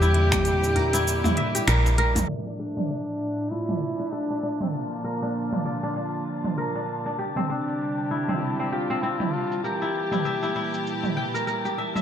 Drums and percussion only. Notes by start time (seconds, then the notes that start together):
0.02 djembe slap, djembe tone, shaker
0.14 closed hi-hat
0.32 finger snap, kick, closed hi-hat, mid tom, djembe slap, shaker
0.45 closed hi-hat, shaker
0.62 djembe tone, shaker
0.76 closed hi-hat, djembe bass
0.93 closed hi-hat, djembe tone, shaker
1.07 shaker
1.24 mid tom, djembe bass, shaker
1.37 closed hi-hat
1.55 closed hi-hat, djembe slap, shaker
1.68 finger snap, closed hi-hat, shaker
1.86 djembe slap, shaker
1.98 closed hi-hat, djembe slap
2.15 closed hi-hat, mid tom, djembe tone, djembe bass, shaker
2.77 mid tom, shaker
2.91 shaker
3.09 shaker
3.39 shaker
3.52 shaker
3.69 mid tom, shaker
4.00 shaker
4.13 shaker
4.31 shaker
4.61 mid tom, shaker
4.74 shaker
4.92 shaker
5.23 shaker
5.36 shaker
5.53 mid tom, shaker
5.84 shaker
5.97 shaker
6.15 shaker
6.44 mid tom, shaker
6.58 shaker
6.76 shaker
7.07 shaker
7.20 shaker
7.36 mid tom
7.68 shaker
7.81 shaker
7.99 shaker
8.28 mid tom, shaker
8.42 shaker
8.60 shaker
8.90 shaker
9.03 shaker
9.20 mid tom, shaker
9.52 shaker
9.65 shaker
9.82 shaker
10.12 mid tom, shaker
10.26 shaker
10.44 shaker
10.74 shaker
10.87 shaker
11.04 mid tom, shaker
11.35 shaker
11.48 shaker
11.66 shaker
11.96 mid tom, shaker